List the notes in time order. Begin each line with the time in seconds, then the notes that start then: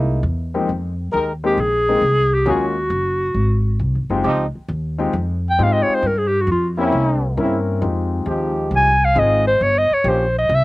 Already playing: C2 G#3 A#3 D#4 E4
0.23 E2
0.54 F2 G#3 A#3 C4 D#4 G4
0.69 F2
1.12 D#2 G#3 D#4 G4 A#4
1.44 G#3 A#3 C4 D#4 G4
1.58 A#1 G#4
1.89 G#3 A#3 C4 D#4 G4
2.02 C2
2.34 G4
2.45 D#2 F#3 G#3 A#3 C#4 F4 F#4 G#4
2.51 F#4
2.90 F#1
3.34 G#1
3.79 C2
3.95 G#1
4.10 F#1 G#3 C4 D#4 F4 G4
4.24 C#2 F3 C4 D#4 G4
4.55 muted upright bass stroke
4.68 D#2
4.98 G#3 C4 D#4 F4 G4
5.13 F2
5.50 G5
5.59 G#2 G#3 C4 D#4 F4 G4
5.63 F5
5.73 D#5
5.83 C#5
5.88 muted upright bass stroke
5.95 C5
6.02 G2
6.07 A#4
6.18 G#4
6.28 G4
6.41 F#4
6.47 F2
6.51 F4
6.78 A#3 C4 C#4 E4 G4
6.92 C2
7.37 G2 C#3 A#3 C4 C#4 E4 A#4
7.81 F2 G#3 C4 D#4 F4 G4
8.26 D#2 F3 G#3 D#4 G4
8.71 C2
8.76 G#5
9.05 F5
9.15 G#1 G#3 C4 D#4 F4 G#4
9.19 D#5
9.47 C5
9.61 G1 C#5
9.78 D#5
9.91 C#5, muted upright bass stroke
10.04 A#1 F3 A#3 C#4 G4
10.09 C5
10.39 D#5
10.49 C2
10.55 E5